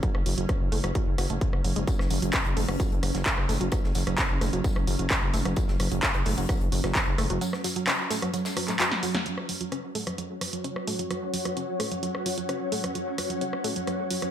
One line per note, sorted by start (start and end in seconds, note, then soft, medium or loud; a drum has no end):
0.00 9.25 F#3 medium
0.00 0.07 F#3 medium
0.00 9.25 C#4 medium
0.00 kick loud
0.00 closed hi-hat medium
0.15 0.23 F#1 medium
0.15 cross-stick medium
0.26 0.35 F#1 loud
0.26 0.30 F#3 medium
0.26 open hi-hat loud
0.38 0.46 F#1 medium
0.38 0.42 F#3 medium
0.38 closed hi-hat medium
0.49 0.53 C#4 medium
0.49 kick loud
0.49 cross-stick medium
0.49 closed hi-hat medium
0.61 0.69 F#1 medium
0.72 0.81 F#1 loud
0.72 0.76 A3 loud
0.72 open hi-hat medium
0.84 0.92 F#1 medium
0.84 0.90 F#3 medium
0.84 cross-stick medium
0.84 closed hi-hat medium
0.95 0.99 F#3 medium
0.95 kick loud
0.95 closed hi-hat medium
1.07 1.15 F#1 medium
1.18 1.27 F#1 loud
1.18 1.23 F#4 medium
1.18 cross-stick medium
1.18 open hi-hat loud
1.30 1.38 F#1 medium
1.30 1.34 A3 medium
1.30 closed hi-hat medium
1.41 1.48 F3 medium
1.41 kick loud
1.41 closed hi-hat medium
1.53 1.61 F#1 medium
1.53 cross-stick medium
1.64 1.73 F#1 medium
1.64 1.67 F#3 medium
1.64 open hi-hat loud
1.76 1.84 F#1 medium
1.76 1.80 G#3 medium
1.76 closed hi-hat medium
1.87 1.92 F#3 medium
1.87 kick loud
1.87 closed hi-hat medium
1.87 tambourine medium
1.99 2.07 F#1 medium
1.99 cross-stick medium
1.99 snare medium
2.10 2.19 F#1 medium
2.10 2.15 F#3 medium
2.10 open hi-hat loud
2.10 tambourine medium
2.22 2.31 F#1 loud
2.22 2.26 F#3 medium
2.22 closed hi-hat medium
2.22 closed hi-hat soft
2.33 2.38 C#4 medium
2.33 kick loud
2.33 cross-stick medium
2.33 snare loud
2.33 clap loud
2.33 closed hi-hat medium
2.33 tambourine medium
2.45 2.54 F#1 medium
2.45 closed hi-hat soft
2.57 2.65 F#1 loud
2.57 2.61 A3 loud
2.57 open hi-hat medium
2.68 2.77 F#1 medium
2.68 2.75 F#3 medium
2.68 cross-stick medium
2.68 closed hi-hat medium
2.80 2.84 F#3 medium
2.80 kick loud
2.80 closed hi-hat medium
2.80 tambourine medium
2.92 3.00 F#1 medium
2.92 closed hi-hat soft
3.03 3.11 F#1 loud
3.03 3.07 F#3 medium
3.03 cross-stick medium
3.03 open hi-hat loud
3.03 tambourine medium
3.15 3.23 F#1 medium
3.15 3.19 F#3 medium
3.15 snare soft
3.15 closed hi-hat medium
3.26 3.30 C#4 medium
3.26 kick loud
3.26 snare loud
3.26 clap loud
3.26 closed hi-hat medium
3.26 tambourine medium
3.38 3.46 F#1 medium
3.38 cross-stick medium
3.49 3.58 F#1 loud
3.49 3.53 A3 loud
3.49 open hi-hat medium
3.49 tambourine medium
3.61 3.69 F#1 medium
3.61 3.67 F#3 medium
3.61 closed hi-hat medium
3.72 3.76 F#3 medium
3.72 kick loud
3.72 cross-stick medium
3.72 closed hi-hat medium
3.72 tambourine medium
3.84 3.92 F#1 medium
3.84 snare soft
3.95 4.04 F#1 medium
3.95 3.99 F#3 medium
3.95 snare soft
3.95 open hi-hat loud
3.95 tambourine medium
4.07 4.15 F#1 loud
4.07 4.11 F#3 medium
4.07 cross-stick medium
4.07 closed hi-hat medium
4.18 4.22 C#4 medium
4.18 kick loud
4.18 snare loud
4.18 clap loud
4.18 closed hi-hat medium
4.18 tambourine medium
4.30 4.38 F#1 medium
4.41 4.50 F#1 loud
4.41 4.46 A3 loud
4.41 cross-stick medium
4.41 open hi-hat medium
4.41 tambourine medium
4.53 4.61 F#1 medium
4.53 4.59 F#3 medium
4.53 closed hi-hat medium
4.64 4.69 F#3 medium
4.64 kick loud
4.64 closed hi-hat medium
4.64 tambourine medium
4.76 4.84 F#1 medium
4.76 cross-stick medium
4.87 4.96 F#1 loud
4.87 4.92 F#3 medium
4.87 open hi-hat loud
4.87 tambourine medium
4.99 5.07 F#1 medium
4.99 5.03 F#3 medium
4.99 closed hi-hat medium
5.10 5.15 C#4 medium
5.10 kick loud
5.10 cross-stick medium
5.10 snare loud
5.10 clap loud
5.10 closed hi-hat medium
5.10 tambourine medium
5.22 5.31 F#1 medium
5.34 5.42 F#1 medium
5.34 5.38 A3 loud
5.34 open hi-hat medium
5.34 tambourine medium
5.45 5.54 F#1 medium
5.45 5.52 F#3 medium
5.45 cross-stick medium
5.45 closed hi-hat medium
5.56 5.61 F#3 medium
5.56 kick loud
5.56 closed hi-hat medium
5.56 tambourine medium
5.68 5.77 F#1 medium
5.68 snare medium
5.80 5.88 F#1 medium
5.80 5.84 F#3 medium
5.80 cross-stick medium
5.80 open hi-hat loud
5.80 tambourine medium
5.92 6.00 F#1 loud
5.92 5.96 F#3 medium
5.92 closed hi-hat medium
5.92 closed hi-hat soft
6.03 6.07 C#4 medium
6.03 kick loud
6.03 snare loud
6.03 clap loud
6.03 closed hi-hat medium
6.03 tambourine medium
6.14 6.23 F#1 medium
6.14 cross-stick medium
6.14 closed hi-hat soft
6.26 6.35 F#1 loud
6.26 6.30 A3 loud
6.26 open hi-hat medium
6.38 6.46 F#1 medium
6.38 6.44 F#3 medium
6.38 closed hi-hat medium
6.49 6.53 F#3 medium
6.49 kick loud
6.49 cross-stick medium
6.49 closed hi-hat medium
6.49 tambourine medium
6.61 6.69 F#1 medium
6.61 closed hi-hat soft
6.72 6.81 F#1 loud
6.72 6.76 F#3 medium
6.72 open hi-hat loud
6.72 tambourine medium
6.84 6.92 F#1 medium
6.84 6.88 F#3 medium
6.84 cross-stick medium
6.84 snare soft
6.84 closed hi-hat medium
6.95 6.99 C#4 medium
6.95 kick loud
6.95 snare loud
6.95 clap loud
6.95 closed hi-hat medium
6.95 tambourine medium
7.07 7.15 F#1 medium
7.18 7.27 F#1 medium
7.18 7.23 A3 loud
7.18 cross-stick medium
7.18 open hi-hat medium
7.18 tambourine medium
7.30 7.38 F#1 medium
7.30 7.36 F#3 medium
7.30 closed hi-hat medium
7.41 7.46 F#3 medium
7.41 closed hi-hat medium
7.41 tambourine medium
7.53 cross-stick medium
7.53 snare soft
7.64 7.69 F#3 medium
7.64 snare soft
7.64 open hi-hat loud
7.64 tambourine medium
7.76 7.80 F#3 medium
7.76 closed hi-hat medium
7.87 7.92 C#4 medium
7.87 cross-stick medium
7.87 snare loud
7.87 clap loud
7.87 closed hi-hat medium
7.87 tambourine medium
8.11 8.15 A3 loud
8.11 snare loud
8.11 open hi-hat medium
8.11 tambourine medium
8.22 8.29 F#3 medium
8.22 cross-stick medium
8.22 closed hi-hat medium
8.34 8.38 F#3 medium
8.34 closed hi-hat medium
8.34 tambourine medium
8.45 snare loud
8.45 tambourine medium
8.57 8.61 F#3 medium
8.57 cross-stick medium
8.57 open hi-hat loud
8.68 8.73 A3 medium
8.68 clap soft
8.68 closed hi-hat medium
8.68 tambourine medium
8.80 8.82 F#3 medium
8.80 snare loud
8.80 clap loud
8.80 closed hi-hat medium
8.80 tambourine medium
8.92 snare medium
9.03 9.05 F#3 medium
9.03 open hi-hat medium
9.03 tambourine medium
9.14 9.17 F#3 medium
9.14 snare loud
9.14 closed hi-hat medium
9.26 9.30 F#3 medium
9.26 14.31 F#3 medium
9.26 14.31 C#4 medium
9.26 14.31 F#4 medium
9.26 closed hi-hat medium
9.37 cross-stick medium
9.37 snare medium
9.45 14.31 C#5 medium
9.49 9.53 F#3 medium
9.49 open hi-hat loud
9.61 9.65 F#3 medium
9.61 closed hi-hat medium
9.61 closed hi-hat soft
9.72 9.76 C#4 medium
9.72 cross-stick medium
9.72 closed hi-hat medium
9.84 closed hi-hat soft
9.95 9.99 A3 medium
9.95 open hi-hat medium
10.07 10.13 F#3 medium
10.07 cross-stick medium
10.07 closed hi-hat medium
10.18 10.23 F#3 medium
10.18 closed hi-hat medium
10.31 closed hi-hat soft
10.35 14.31 F#5 medium
10.41 10.46 F#3 medium
10.41 cross-stick medium
10.41 open hi-hat loud
10.53 10.57 F#3 medium
10.53 snare soft
10.53 closed hi-hat medium
10.64 10.69 C#4 medium
10.64 closed hi-hat medium
10.64 tambourine medium
10.76 cross-stick medium
10.87 10.92 A3 loud
10.87 open hi-hat medium
10.99 11.05 F#3 medium
10.99 closed hi-hat medium
11.11 11.15 F#3 medium
11.11 cross-stick medium
11.11 closed hi-hat medium
11.22 snare soft
11.33 11.38 F#3 medium
11.33 snare soft
11.33 open hi-hat loud
11.33 tambourine medium
11.45 11.50 F#3 medium
11.45 cross-stick medium
11.45 closed hi-hat medium
11.57 11.61 C#4 medium
11.57 closed hi-hat medium
11.57 tambourine medium
11.80 11.84 A3 loud
11.80 cross-stick medium
11.80 open hi-hat medium
11.92 11.98 F#3 medium
11.92 closed hi-hat medium
12.03 12.07 F#3 medium
12.03 closed hi-hat medium
12.03 tambourine medium
12.15 cross-stick medium
12.26 12.30 F#3 medium
12.26 open hi-hat loud
12.38 12.42 F#3 medium
12.38 closed hi-hat medium
12.49 12.53 C#4 medium
12.49 cross-stick medium
12.49 closed hi-hat medium
12.72 12.76 A3 loud
12.72 open hi-hat medium
12.84 12.90 F#3 medium
12.84 cross-stick medium
12.84 closed hi-hat medium
12.95 12.99 F#3 medium
12.95 closed hi-hat medium
12.95 tambourine medium
13.07 snare medium
13.18 13.23 F#3 medium
13.18 cross-stick medium
13.18 open hi-hat loud
13.30 13.34 F#3 medium
13.30 closed hi-hat medium
13.30 closed hi-hat soft
13.41 13.46 C#4 medium
13.41 closed hi-hat medium
13.41 tambourine medium
13.53 cross-stick medium
13.53 closed hi-hat soft
13.64 13.69 A3 loud
13.64 open hi-hat medium
13.76 13.82 F#3 medium
13.76 closed hi-hat medium
13.87 13.92 F#3 medium
13.87 cross-stick medium
13.87 closed hi-hat medium
13.87 tambourine medium
13.99 closed hi-hat soft
14.10 14.15 F#3 medium
14.10 open hi-hat loud
14.10 tambourine medium
14.22 14.26 F#3 medium
14.22 cross-stick medium
14.22 snare soft
14.22 closed hi-hat medium